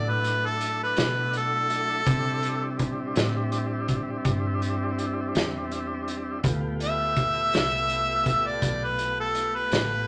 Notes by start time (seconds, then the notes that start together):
Already playing: A2 F#3 A3 D4 E4 D5
0.09 B4
0.24 closed hi-hat
0.46 A4
0.61 closed hi-hat
0.83 B4
0.97 B2, snare, closed hi-hat
1.33 A4, closed hi-hat
1.70 closed hi-hat
2.05 C3 G3 C4 D4 E4, kick, closed hi-hat
2.43 closed hi-hat
2.79 kick, closed hi-hat
3.16 A2, snare, closed hi-hat
3.52 closed hi-hat
3.88 kick, closed hi-hat
4.25 G2, kick, closed hi-hat
4.62 closed hi-hat
4.99 closed hi-hat
5.35 E2, snare, closed hi-hat
5.71 closed hi-hat
6.08 closed hi-hat
6.43 D2 A3 B3 F4 G4, kick, closed hi-hat
6.80 E5, closed hi-hat
7.16 kick, closed hi-hat
7.53 C2, snare, closed hi-hat
7.89 closed hi-hat
8.26 kick, closed hi-hat
8.47 D5
8.62 B1, kick, closed hi-hat
8.84 B4
8.99 closed hi-hat
9.20 A4
9.35 closed hi-hat
9.55 B4
9.71 A1, snare, closed hi-hat